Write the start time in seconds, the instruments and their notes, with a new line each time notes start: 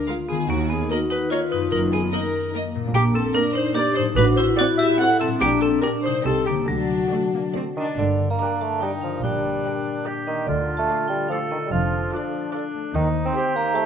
Already playing: harp D3 G#3 F4 A#4
0.07 viola section G#3 A#4, french horn section F4, violin section F5
0.28 harp D#3, vibraphone B3, clarinet G#4, violin section G#4
0.35 harp A#3
0.40 harp D#4
0.44 cello section D#2, double bass section D#2, french horn section D#4, harp A#4
0.49 vibraphone A#3, clarinet F#4, violin section F#4
0.69 vibraphone B3, violin section G#4, clarinet G#4
0.90 viola section A#3 A#4, vibraphone D#4, french horn section F#4, violin section A#4 D#5, clarinet A#4
1.10 vibraphone D#4, violin section B4, clarinet B4
1.30 viola section A#3 A#4, vibraphone F4, french horn section F4, clarinet C#5, violin section C#5 D#5
1.51 harp F#2, vibraphone D#4, clarinet B4, violin section B4
1.57 harp A#3
1.62 harp D#4
1.66 harp A#4
1.71 double bass section F#1, cello section F#2, vibraphone D#4, violin section A#4, clarinet A#4
1.92 vibraphone B3, violin section G#4, clarinet G#4
2.12 viola section A#3 A#4, french horn section D#4, vibraphone D#4, violin section A#4 D#5, clarinet A#4
2.53 french horn section A#3, viola section A#3 A#4, violin section D#5
2.75 harp A#2
2.80 harp A#3
2.84 harp D4
2.89 harp A#4
2.93 double bass section A#1, cello section A#2, vibraphone A#3, violin section G4, clarinet G4
3.14 vibraphone C4, clarinet A4, violin section A4
3.35 viola section A#3 A#4, vibraphone D4, french horn section D4, violin section A#4 D5, clarinet A#4
3.55 vibraphone D#4, violin section C5, clarinet C5
3.75 viola section A#3 A#4, french horn section D4, vibraphone G4, violin section D5, clarinet D5
3.95 harp A2, vibraphone D#4, violin section C5, clarinet C5
4.02 harp F#3
4.07 harp F#4
4.11 harp C5
4.16 double bass section A1, cello section A2, vibraphone D4, french horn section F#4, clarinet B4, violin section B4
4.36 vibraphone E4, clarinet C5, violin section C5
4.57 viola section C4 F#4, french horn section E4, vibraphone F#4, clarinet D5, violin section D5 F#5
4.77 vibraphone G4, clarinet E5, violin section E5
4.98 viola section C4 F#4, vibraphone A4, violin section F#5, clarinet F#5
5.20 harp A#2, vibraphone C4, clarinet A4, violin section A4
5.27 harp G3 D4
5.35 harp D5
5.40 double bass section A#1, cello section A#2, vibraphone A#3, french horn section D4, clarinet G4, violin section G4
5.61 vibraphone C4, clarinet A4, violin section A4
5.81 french horn section D4, viola section D4 G4, vibraphone D4, clarinet A#4, violin section A#4 D5
6.02 vibraphone D#4, violin section C5, clarinet C5
6.06 harp C3
6.10 harp G3
6.15 harp D#4
6.20 harp C5
6.24 double bass section C2, cello section C3, viola section C4 G4, vibraphone C4, french horn section G4, violin section A4 D#5, clarinet A4
6.46 harp D3, vibraphone A#3, violin section G4, clarinet G4
6.54 harp F#3
6.58 harp D4
6.63 double bass section D2, harp A4
6.68 cello section D3, vibraphone F#3, violin section D4, clarinet D4, french horn section F#4
7.11 viola section A3 F#4, cello section A3, violin section D5
7.34 cello section A#3
7.55 viola section A3 F#4, cello section C4, violin section D5
7.77 bassoon D#3, cello section D4, vibraphone D#5
7.98 double bass section G1, harp G2, cello section G2, bassoon D3, french horn section D4 A#4, vibraphone D5, triangle
8.20 harp D3
8.30 bassoon A#3, vibraphone A#5
8.40 harp G3, oboe D4, viola section G4, clarinet A#4, violin section A#4 D5, flute section G5
8.61 bassoon A3, harp A#4, vibraphone A5
8.80 harp G3, bassoon G3, oboe D#4, viola section G4, violin section A#4 D5, clarinet A#4, vibraphone G5, flute section G5
9.01 harp D3, bassoon F3, vibraphone F5
9.23 double bass section A#1, harp A#2, cello section A#2, bassoon G3, oboe D4, vibraphone G5
9.44 harp A#3
9.64 harp G3, viola section G4, violin section A#4 D5, clarinet A#4, flute section G5
9.85 harp D5
10.06 harp G3, viola section G4, oboe G4, clarinet A#4, violin section A#4 D5, flute section G5
10.27 bassoon D#3, harp A#3, vibraphone D#5
10.47 double bass section D2, cello section D2, harp D3, bassoon D3, french horn section F4 A4, oboe F4, vibraphone D5
10.68 harp D4
10.77 bassoon A3, vibraphone A5
10.88 harp A3, viola section F4, clarinet A4, violin section A4 D5, flute section F5
11.08 bassoon G3, harp D5, vibraphone G5
11.28 bassoon F3, harp A3, viola section F4, clarinet A4, oboe A4, violin section D5, vibraphone F5, flute section F5
11.33 violin section A4
11.51 bassoon D#3, harp D4, vibraphone D#5
11.66 bassoon G3
11.71 double bass section F1, cello section F2, harp F3, bassoon F3, french horn section D4, oboe F4, vibraphone F5
12.12 oboe D4, viola section F4, harp F4, clarinet A4, violin section A4 D5, flute section D5
12.33 harp A4
12.53 oboe D4, harp F4, viola section F4, clarinet A4, violin section A4 D5, flute section D5
12.74 harp A3
12.94 double bass section D#2, cello section D#2, harp D#3, bassoon D#3, oboe D#4, french horn section D#4 C5, vibraphone D#5
13.14 harp D#4
13.25 bassoon C4, vibraphone C6
13.35 harp C4, viola section G4, oboe G4, clarinet G4, violin section G4 C5, flute section C5
13.55 bassoon A#3, harp C5, vibraphone A#5
13.75 bassoon A3, harp C4, viola section G4, violin section G4 C5, clarinet G4, flute section C5, vibraphone A5